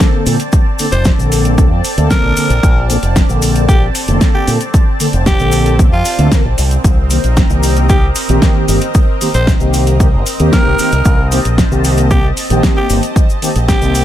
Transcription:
Already playing: analog polysynth D3 A#3 C4 A4, analog synth pad C4 D5 A5
0.00 kick, snare, closed hi-hat, cabasa
0.26 fingered electric bass A#2, analog polysynth D3 A#3 C4 A4, open hi-hat, cabasa
0.40 closed hi-hat, cabasa
0.52 kick, closed hi-hat, cabasa
0.78 analog polysynth D3 A#3 C4 A4, open hi-hat, cabasa
0.92 fingered electric bass F1, tenor saxophone C5, closed hi-hat, cabasa
1.05 kick, snare, closed hi-hat, cabasa
1.18 fingered electric bass A#1, analog polysynth D3 A#3 C4 A4, cabasa
1.32 open hi-hat, cabasa
1.45 closed hi-hat, cabasa
1.57 analog polysynth D3 A#3 C4 A4, kick, closed hi-hat, cabasa
1.71 fingered electric bass F2
1.84 open hi-hat, cabasa
1.97 fingered electric bass D2, analog polysynth D3 A#3 C4 A4, closed hi-hat, cabasa
2.11 tenor saxophone A#4, kick, snare, closed hi-hat, cabasa
2.24 fingered electric bass A#1
2.36 analog polysynth D3 A#3 C4 A4, open hi-hat, cabasa
2.50 fingered electric bass A#1, closed hi-hat, cabasa
2.63 fingered electric bass A#1, kick, closed hi-hat, cabasa
2.89 analog polysynth D3 A#3 C4 A4, open hi-hat, cabasa
3.03 fingered electric bass F1, closed hi-hat, cabasa
3.16 kick, snare, closed hi-hat, cabasa
3.29 fingered electric bass A#1, analog polysynth D3 A#3 C4 A4, cabasa
3.42 open hi-hat, cabasa
3.56 closed hi-hat, cabasa
3.68 analog polysynth D3 A#3 C4 A4, tenor saxophone G4, kick, closed hi-hat, cabasa
3.95 open hi-hat, cabasa
4.08 fingered electric bass F1, analog polysynth D3 A#3 C4 A4, closed hi-hat, cabasa
4.21 kick, snare, closed hi-hat, cabasa
4.34 tenor saxophone G4
4.47 fingered electric bass A#2, analog polysynth D3 A#3 C4 A4, open hi-hat, cabasa
4.61 closed hi-hat, cabasa
4.74 kick, closed hi-hat, cabasa
4.99 analog polysynth D3 A#3 C4 A4, open hi-hat, cabasa
5.13 fingered electric bass F1, closed hi-hat, cabasa
5.26 tenor saxophone G4, kick, snare, closed hi-hat, cabasa
5.39 fingered electric bass A#1, analog polysynth D3 A#3 C4 A4, cabasa
5.52 open hi-hat, cabasa
5.66 closed hi-hat, cabasa
5.78 analog polysynth D3 A#3 C4 A4, kick, closed hi-hat, cabasa
5.92 fingered electric bass F2, tenor saxophone F4
6.05 open hi-hat, cabasa
6.18 fingered electric bass D2, analog polysynth D3 A#3 C4 A4, closed hi-hat, cabasa
6.31 analog polysynth D3 A#3 C4 A#4, kick, snare, closed hi-hat, cabasa
6.45 fingered electric bass A#1
6.58 fingered electric bass C2, analog synth pad A#4 D#5, open hi-hat, cabasa
6.71 closed hi-hat, cabasa
6.84 fingered electric bass C2, kick, closed hi-hat, cabasa
7.10 analog polysynth D#3 A#3 C4 G4, open hi-hat, cabasa
7.24 fingered electric bass A#1, closed hi-hat, cabasa
7.37 kick, snare, closed hi-hat, cabasa
7.50 fingered electric bass C2, analog polysynth D#3 A#3 C4 G4, cabasa
7.63 open hi-hat, cabasa
7.76 closed hi-hat, cabasa
7.89 analog polysynth D#3 A#3 C4 G4, tenor saxophone G4, kick, closed hi-hat, cabasa
8.15 open hi-hat, cabasa
8.28 fingered electric bass A#1, analog polysynth D#3 A#3 C4 G4, closed hi-hat, cabasa
8.42 kick, snare, closed hi-hat, cabasa
8.68 fingered electric bass G1, analog polysynth D#3 A#3 C4 G4, open hi-hat, cabasa
8.81 closed hi-hat, cabasa
8.94 kick, closed hi-hat, cabasa
9.21 analog polysynth D#3 A#3 C4 G4, open hi-hat, cabasa
9.34 fingered electric bass A#1, tenor saxophone C5, closed hi-hat, cabasa
9.47 kick, snare, closed hi-hat, cabasa
9.60 fingered electric bass C2, analog polysynth D#3 A#3 C4 G4, cabasa
9.74 open hi-hat, cabasa
9.87 closed hi-hat, cabasa
10.00 analog polysynth D#3 A#3 C4 G4, kick, closed hi-hat, cabasa
10.13 fingered electric bass G1
10.26 open hi-hat, cabasa
10.39 fingered electric bass D#2, analog polysynth D#3 A#3 C4 G4, closed hi-hat, cabasa
10.53 tenor saxophone A#4, kick, snare, closed hi-hat, cabasa
10.66 fingered electric bass C2
10.79 analog polysynth D#3 A#3 C4 G4, analog synth pad A5, muted fingered electric bass stroke, open hi-hat, cabasa
10.92 fingered electric bass C2, closed hi-hat, cabasa
11.05 fingered electric bass C2, kick, closed hi-hat, cabasa
11.31 analog polysynth D#3 A#3 C4 G4, open hi-hat, cabasa
11.45 fingered electric bass A#1, closed hi-hat, cabasa
11.58 kick, snare, closed hi-hat, cabasa
11.71 fingered electric bass C2, analog polysynth D#3 A#3 C4 G4, cabasa
11.84 open hi-hat, cabasa
11.97 closed hi-hat, cabasa
12.10 analog polysynth D#3 A#3 C4 G4, tenor saxophone G4, kick, closed hi-hat, cabasa
12.37 open hi-hat, cabasa
12.49 fingered electric bass A#1, analog polysynth D#3 A#3 C4 G4, closed hi-hat, cabasa
12.63 kick, snare, closed hi-hat, cabasa
12.77 tenor saxophone G4
12.89 fingered electric bass G1, analog polysynth D#3 A#3 C4 G4, open hi-hat, cabasa
13.03 closed hi-hat, cabasa
13.16 kick, closed hi-hat, cabasa
13.30 cabasa
13.42 analog polysynth D#3 A#3 C4 G4, open hi-hat, cabasa
13.56 fingered electric bass A#1, closed hi-hat, cabasa
13.68 tenor saxophone G4, kick, snare, closed hi-hat, cabasa
13.81 fingered electric bass C2, analog polysynth D#3 A#3 C4 G4, cabasa
13.95 open hi-hat, cabasa

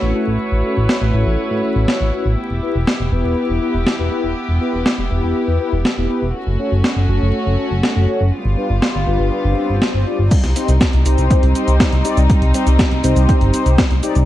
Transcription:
Already playing: string section A3 E4 F#4 B4 C#5
0.02 analog synth bass A1, analog polysynth C#4 E4 F#4 A4
0.15 analog polysynth C#4 E4 F#4 A4
0.27 analog synth bass A1
0.52 analog synth bass A1
0.64 analog polysynth C#4 E4 F#4 A4
0.77 analog synth bass A1
0.89 snare
1.01 analog synth bass A1
1.14 analog synth bass A1, analog polysynth C#4 E4 F#4 A4
1.26 analog synth bass A1
1.51 analog synth bass A2
1.63 analog polysynth C#4 E4 F#4 A4
1.76 analog synth bass A1
1.88 snare
2.01 analog synth bass A1
2.13 analog polysynth C#4 E4 F#4 B4
2.25 analog synth bass A1
2.38 string section B3 G4
2.50 analog synth bass E1
2.63 analog polysynth B3 E4 G4 B4
2.75 analog synth bass E1
2.87 snare
3.00 analog synth bass E1
3.12 analog synth bass E1, analog polysynth B3 E4 G4 B4
3.24 analog synth bass E1
3.49 analog synth bass E1
3.62 analog polysynth B3 E4 G4 B4
3.74 analog synth bass E1
3.87 snare
3.99 analog synth bass E1, analog polysynth B3 E4 G4 B4
4.11 analog polysynth B3 E4 G4 B4
4.24 analog synth bass E1
4.49 analog synth bass E1
4.61 analog polysynth B3 E4 G4 B4
4.73 analog synth bass E1
4.86 snare
4.98 analog synth bass E1
5.10 analog synth bass E1, analog polysynth B3 E4 G4 B4
5.23 analog synth bass E1
5.48 analog synth bass E2
5.60 analog polysynth B3 E4 G4 B4
5.73 analog synth bass E1
5.85 snare
5.97 analog synth bass E1, analog polysynth B3 E4 G4 B4
6.10 analog polysynth B3 E4 G4 B4
6.22 analog synth bass E1
6.35 string section A3 C#4 F#4
6.47 analog synth bass F#1
6.59 analog polysynth C#4 F#4 A4 C#5
6.72 analog synth bass F#1
6.84 snare
6.96 analog synth bass F#1
7.09 analog synth bass F#1, analog polysynth C#4 F#4 A4 C#5
7.21 analog synth bass F#1
7.46 analog synth bass F#1
7.58 analog polysynth C#4 F#4 A4 C#5
7.71 analog synth bass F#1
7.83 snare
7.96 analog synth bass F#1, analog polysynth C#4 F#4 A4 C#5
8.08 analog polysynth C#4 F#4 A4 C#5
8.21 analog synth bass F#1
8.33 string section G3 B3 F4
8.45 analog synth bass G1
8.58 analog polysynth D4 F4 G4 B4
8.70 analog synth bass G1
8.82 snare
8.95 analog synth bass G1
9.07 analog synth bass G1, analog polysynth D4 F4 G4 B4
9.20 analog synth bass G1
9.32 swell
9.45 analog synth bass G1
9.57 analog polysynth D4 F4 G4 B4
9.69 analog synth bass G1
9.82 snare
9.94 analog synth bass G1
10.06 analog polysynth D4 F4 G4 D5
10.19 analog synth bass G1
10.31 string section G3 C4 D#4, kick, closed hi-hat, crash, cabasa
10.44 analog synth bass C2, snare, closed hi-hat
10.56 analog polysynth C4 D#4 G4 C5, closed hi-hat, cabasa
10.68 analog synth bass C2, closed hi-hat, cabasa
10.81 kick, snare, closed hi-hat, cabasa
10.93 analog synth bass C2, closed hi-hat
11.06 analog synth bass C2, analog polysynth C4 D#4 G4 C5, closed hi-hat, cabasa
11.18 analog synth bass C2, closed hi-hat, cabasa
11.30 kick, closed hi-hat, cabasa
11.43 analog synth bass C2, closed hi-hat
11.55 analog polysynth C4 D#4 G4 C5, closed hi-hat, cabasa
11.68 analog synth bass C2, closed hi-hat, cabasa
11.80 kick, snare, closed hi-hat, cabasa
11.92 analog synth bass C2, closed hi-hat
12.05 analog polysynth C4 D#4 G4 D5, closed hi-hat, cabasa
12.17 analog synth bass C2, closed hi-hat, cabasa
12.30 kick, closed hi-hat, cabasa
12.42 analog synth bass C2, closed hi-hat
12.54 analog polysynth C4 D#4 G4 C5, closed hi-hat, cabasa
12.67 analog synth bass C2, closed hi-hat, cabasa
12.79 kick, snare, closed hi-hat, cabasa
12.91 analog synth bass C2, closed hi-hat
13.04 analog synth bass C2, analog polysynth C4 D#4 G4 C5, closed hi-hat, cabasa
13.16 analog synth bass C2, closed hi-hat, cabasa
13.29 kick, closed hi-hat, cabasa
13.41 analog synth bass G1, closed hi-hat
13.53 analog polysynth C4 D#4 G4 C5, closed hi-hat, cabasa
13.66 analog synth bass C2, closed hi-hat, cabasa
13.78 kick, snare, closed hi-hat, cabasa
13.91 analog synth bass C2, closed hi-hat
14.03 analog polysynth C4 D#4 G4 D5, closed hi-hat, cabasa
14.15 analog synth bass C2, closed hi-hat, cabasa

